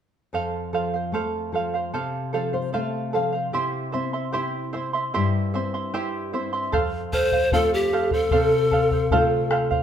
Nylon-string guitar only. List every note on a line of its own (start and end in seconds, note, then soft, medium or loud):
0.33 1.89 F2 soft
0.73 1.12 F3 soft
1.12 1.51 A3 soft
1.52 1.91 F3 soft
1.94 3.50 C3 medium
2.33 2.72 F3 soft
2.33 2.52 A4 medium
2.54 2.72 C5 medium
2.74 3.12 A3 soft
2.74 3.11 E5 medium
3.15 3.53 F3 soft
3.15 3.51 F5 medium
3.54 5.10 C3 medium
3.94 4.32 C4 soft
4.35 4.73 E4 soft
4.75 5.13 C4 soft
5.15 6.70 G2 medium
5.55 5.93 C4 soft
5.94 6.32 E4 soft
6.34 6.72 C4 soft
6.73 8.28 F2 medium
7.52 8.30 A3 soft
7.52 8.30 C4 soft
7.52 8.30 F4 soft
8.32 9.83 C3 medium
9.12 9.83 A3 soft
9.12 9.83 C4 soft
9.12 9.83 F4 medium